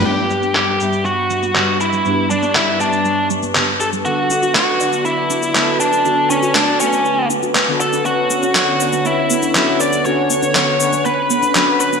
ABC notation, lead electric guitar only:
X:1
M:4/4
L:1/8
Q:1/4=120
K:Glyd
V:1 name="Lead electric guitar"
G2 G2 F3 E- | E D E D2 z2 A | F2 F2 E3 D- | D C D C2 z2 A |
F2 F2 E3 d | c2 c2 B3 B |]